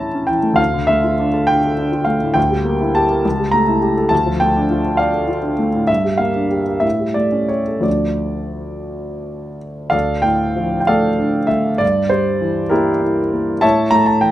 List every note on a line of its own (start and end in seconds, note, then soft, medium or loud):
0.00 0.55 A2 soft
0.00 0.29 E3 soft
0.00 0.15 C#4 soft
0.00 0.61 E4 soft
0.00 0.61 C#5 soft
0.00 0.61 E5 soft
0.00 0.61 A5 medium
0.00 0.61 A#5 medium
0.15 0.38 C#4 soft
0.27 0.53 E3 soft
0.27 0.58 G5 medium
0.43 0.58 A3 soft
0.54 2.30 D2 soft
0.54 0.88 F5 medium
0.74 0.98 D3 soft
0.87 1.13 A3 soft
0.87 1.47 E5 medium
1.04 1.28 F4 soft
1.20 1.43 D4 soft
1.34 1.57 A4 soft
1.47 1.72 D4 soft
1.47 2.06 G5 medium
1.64 1.87 A4 soft
1.78 2.02 D4 soft
1.92 2.16 F4 soft
2.05 2.30 A3 soft
2.05 2.35 F5 medium
2.22 2.37 A2 soft
2.34 3.22 D2 soft
2.34 2.94 G5 medium
2.50 2.75 G3 soft
2.65 2.89 A#3 soft
2.81 3.05 E4 soft
2.95 3.19 G4 soft
2.95 3.53 A5 medium
3.11 3.25 A#4 soft
3.25 4.09 C#2 soft
3.39 3.62 G3 soft
3.52 3.77 A3 soft
3.52 4.10 A#5 medium
3.68 3.91 E4 soft
3.82 4.05 G4 soft
3.97 4.12 A4 soft
4.09 5.84 D2 soft
4.09 4.40 A5 medium
4.26 4.50 F3 soft
4.40 4.65 A3 soft
4.40 4.99 G5 medium
4.56 4.80 D4 soft
4.71 4.94 F4 soft
4.85 5.08 A4 soft
4.97 5.23 D5 soft
4.97 5.28 F5 medium
5.14 5.37 A4 soft
5.28 5.52 F4 soft
5.43 5.67 D4 soft
5.59 5.83 A3 soft
5.74 5.89 A2 soft
5.87 6.82 G2 soft
5.87 6.19 E5 medium
6.05 6.30 G3 soft
6.18 6.45 A#3 soft
6.18 6.83 F5 medium
6.35 6.61 D4 soft
6.51 6.77 G4 soft
6.67 6.84 A#4 soft
6.80 7.81 A2 soft
6.80 7.15 E5 medium
6.99 7.27 G3 soft
7.14 7.44 A3 soft
7.14 7.50 D5 medium
7.32 7.61 C#4 soft
7.49 7.78 G4 soft
7.49 7.84 C#5 soft
7.68 7.85 A4 soft
7.80 9.86 D2 soft
7.80 9.87 F3 soft
7.80 9.88 A3 soft
7.80 9.88 D4 soft
7.80 9.58 D5 soft
9.90 11.77 D2 soft
9.90 10.22 A4 soft
9.90 10.22 D5 soft
9.90 10.24 F5 medium
10.22 10.76 A2 soft
10.22 10.79 G5 medium
10.56 11.07 F3 soft
10.80 10.88 G5 soft
10.87 11.39 A3 soft
10.87 11.47 A4 soft
10.87 11.47 D5 soft
10.87 11.50 F5 medium
11.19 11.69 D4 soft
11.47 11.80 A3 soft
11.47 11.80 E5 medium
11.78 13.58 G2 soft
11.78 12.10 D5 medium
12.10 12.60 G3 soft
12.10 12.71 C5 medium
12.41 12.90 E3 soft
12.70 13.20 A#3 soft
12.70 13.01 E4 medium
12.70 13.58 G4 soft
12.70 13.62 A#4 medium
13.03 13.51 E4 soft
13.33 13.63 A#3 soft
13.61 14.31 A2 soft
13.61 13.90 C#5 medium
13.61 13.90 E5 medium
13.61 13.92 A5 medium
13.91 14.31 A3 soft
13.91 14.06 A#5 medium
14.06 14.21 A5 medium
14.21 14.31 E3 soft
14.21 14.31 G5 medium